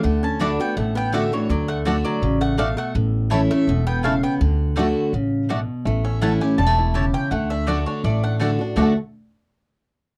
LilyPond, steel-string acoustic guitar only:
\new Staff \with { instrumentName = "Steel-string acoustic guitar" } { \time 4/4 \key d \major \tempo 4 = 165 << { r4 <d a d' fis'>8 <d' fis'>8 r4 <d a d' fis'>8 <d' fis'>8 | r4 <d a d' fis'>4 r2 | r4 <e a cis' e'>8 <cis' e'>8 r2 | r4 <d a d' fis'>4 r2 |
r4 <e a cis' e'>8 <cis' e'>8 r2 | r4 <d a d' fis'>4 r4 <d a d' fis'>8 <d' fis'>8 | <d a d' fis'>8 r2. r8 | } \\ { d2 a,2 | d2 cis4 b,4 | a,2 b,4 cis4 | d2 cis4 b,4 |
a,2 b,4 cis4 | d2 a,2 | r1 | } >> }